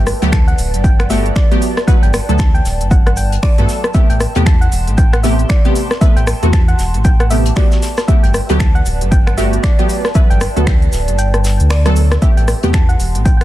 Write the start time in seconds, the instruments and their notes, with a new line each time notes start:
Already playing: sub bass G1, synth stab A3 B3 F#4 G4, ambient pad B4 D5 A5, synth pluck G5
0.07 cross-stick, open hi-hat, cabasa, shaker
0.22 sub bass D2, synth stab F#3 A3 B3 G4, closed hi-hat, cabasa
0.32 synth pluck A5, finger snap, kick, snare, closed hi-hat, cabasa, shaker
0.48 synth pluck F#5, closed hi-hat, cabasa
0.58 sub bass D1, open hi-hat, cabasa, shaker
0.74 sub bass G1, closed hi-hat, cabasa
0.84 synth pluck G5, kick, closed hi-hat, cabasa, shaker
0.99 synth pluck F#5, finger snap, cross-stick, closed hi-hat, cabasa
1.10 synth stab A3 B3 F#4 G4, synth pluck E5, snare, open hi-hat, cabasa, shaker
1.26 closed hi-hat, cabasa
1.36 synth pluck D5, finger snap, kick, snare, closed hi-hat, cabasa, shaker
1.51 synth stab F#3 A3 B3 G4, closed hi-hat, cabasa
1.62 open hi-hat, cabasa, shaker
1.76 cross-stick, snare, cabasa
1.87 synth stab F#3 A3 B3 B4, synth pluck F#5, kick, closed hi-hat, cabasa, shaker
2.03 sub bass G1, synth pluck G5, closed hi-hat, cabasa
2.14 finger snap, cross-stick, open hi-hat, cabasa, shaker
2.29 sub bass D2, synth stab F#3 A3 B3 A4, closed hi-hat, cabasa
2.39 synth pluck A5, finger snap, kick, snare, closed hi-hat, cabasa, shaker
2.54 synth pluck G5, closed hi-hat, cabasa
2.65 sub bass D1, snare, open hi-hat, cabasa, shaker
2.81 sub bass G1, closed hi-hat, cabasa
2.91 synth pluck F#5, kick, closed hi-hat, cabasa, shaker
3.06 synth pluck F#5, cross-stick, closed hi-hat, cabasa
3.17 synth pluck G5, open hi-hat, cabasa, shaker
3.32 closed hi-hat, cabasa
3.43 synth pluck D5, finger snap, kick, open hi-hat, cabasa, shaker
3.58 sub bass G2, synth stab F#3 A3 B3 A4, closed hi-hat, cabasa
3.69 snare, open hi-hat, cabasa, shaker
3.84 cross-stick, cabasa
3.94 synth stab C3 A3 B3 G4, synth pluck E5, kick, closed hi-hat, cabasa, shaker
4.10 sub bass A1, synth pluck G5, closed hi-hat, cabasa
4.15 ambient pad C6
4.20 cross-stick, open hi-hat, cabasa, shaker
4.35 sub bass E2, synth stab C3 A3 B3 G4, closed hi-hat, cabasa
4.46 synth pluck A5, finger snap, kick, snare, closed hi-hat, cabasa, shaker
4.61 synth pluck F#5, closed hi-hat, cabasa
4.72 sub bass E1, open hi-hat, cabasa, shaker
4.87 sub bass A1, closed hi-hat, cabasa
4.97 synth pluck G5, kick, closed hi-hat, cabasa, shaker
5.13 synth pluck F#5, finger snap, cross-stick, closed hi-hat, cabasa
5.23 synth stab C3 A3 B3 G4, synth pluck E5, snare, open hi-hat, cabasa, shaker
5.39 closed hi-hat, cabasa
5.49 synth pluck D5, finger snap, kick, snare, closed hi-hat, cabasa, shaker
5.65 synth stab C3 A3 B3 G4, closed hi-hat, cabasa
5.76 open hi-hat, cabasa, shaker
5.91 cross-stick, snare, cabasa
6.01 synth stab C3 A3 B3 B4, synth pluck E5, kick, closed hi-hat, cabasa, shaker
6.16 sub bass A1, synth pluck G5, closed hi-hat, cabasa
6.27 finger snap, cross-stick, open hi-hat, cabasa, shaker
6.42 sub bass E2, synth stab C3 A3 B3 F#4, closed hi-hat, cabasa
6.53 synth pluck A5, finger snap, kick, snare, closed hi-hat, cabasa, shaker
6.68 synth pluck F#5, closed hi-hat, cabasa
6.79 sub bass E1, snare, open hi-hat, cabasa, shaker
6.94 sub bass A1, closed hi-hat, cabasa
7.04 synth pluck G5, kick, closed hi-hat, cabasa, shaker
7.20 synth pluck F#5, cross-stick, closed hi-hat, cabasa
7.30 synth stab C3 A3 B3 G4, synth pluck E5, open hi-hat, cabasa, shaker
7.46 closed hi-hat, cabasa
7.56 synth stab A3 B3 F#4 G4, synth pluck D5, finger snap, kick, snare, open hi-hat, cabasa, shaker
7.71 snare, closed hi-hat, cabasa, shaker
7.82 snare, open hi-hat, cabasa, shaker
7.90 ambient pad B4
7.95 ambient pad D5, cross-stick, snare, cabasa, shaker
8.08 synth stab A3 B3 F#4 G4, synth pluck E5, kick, closed hi-hat, cabasa, shaker
8.23 sub bass G1, synth pluck G5, closed hi-hat, cabasa
8.34 cross-stick, open hi-hat, cabasa, shaker
8.49 sub bass D2, synth stab F#3 A3 B3 G4, closed hi-hat, cabasa
8.60 synth pluck A5, finger snap, kick, snare, closed hi-hat, cabasa, shaker
8.75 synth pluck F#5, closed hi-hat, cabasa
8.86 sub bass D1, open hi-hat, cabasa, shaker
9.01 sub bass G1, closed hi-hat, cabasa
9.11 synth pluck G5, kick, closed hi-hat, cabasa, shaker
9.27 synth pluck F#5, finger snap, cross-stick, closed hi-hat, cabasa
9.37 synth stab A3 B3 F#4 G4, synth pluck E5, snare, open hi-hat, cabasa, shaker
9.53 closed hi-hat, cabasa
9.63 synth pluck D5, finger snap, kick, snare, closed hi-hat, cabasa, shaker
9.79 synth stab F#3 A3 B3 G4, closed hi-hat, cabasa
9.89 open hi-hat, cabasa, shaker
10.05 cross-stick, snare, cabasa
10.15 synth stab F#3 A3 B3 B4, synth pluck E5, kick, closed hi-hat, cabasa, shaker
10.30 sub bass G1, synth pluck G5, closed hi-hat, cabasa
10.41 finger snap, cross-stick, open hi-hat, cabasa, shaker
10.56 sub bass D2, synth stab F#3 A3 B3 A4, closed hi-hat, cabasa
10.67 finger snap, kick, snare, closed hi-hat, cabasa, shaker
10.82 closed hi-hat, cabasa
10.92 sub bass D1, snare, open hi-hat, cabasa, shaker
11.08 sub bass G1, closed hi-hat, cabasa
11.18 synth pluck G5, closed hi-hat, cabasa, shaker
11.34 cross-stick, closed hi-hat, cabasa
11.44 snare, open hi-hat, cabasa, shaker
11.60 sub bass D2, closed hi-hat, cabasa
11.70 synth pluck D5, finger snap, cross-stick, snare, open hi-hat, cabasa, shaker
11.86 synth stab F#3 A3 B3 A4, cross-stick, closed hi-hat, cabasa
11.96 open hi-hat, cabasa, shaker
12.11 cross-stick, snare, closed hi-hat, cabasa
12.22 synth stab C3 A3 B3 G4, synth pluck E5, kick, closed hi-hat, cabasa, shaker
12.37 sub bass A1, synth pluck G5, ambient pad C6, closed hi-hat, cabasa
12.48 cross-stick, open hi-hat, cabasa, shaker
12.63 sub bass E2, synth stab C3 A3 B3 G4, closed hi-hat, cabasa
12.73 synth pluck A5, finger snap, kick, snare, closed hi-hat, cabasa, shaker
12.89 synth pluck F#5, closed hi-hat, cabasa
13.00 sub bass E1, open hi-hat, cabasa, shaker
13.15 sub bass A1, closed hi-hat, cabasa
13.25 synth pluck G5, kick, closed hi-hat, cabasa, shaker
13.37 synth pluck F#5 G5, finger snap, cross-stick, closed hi-hat, cabasa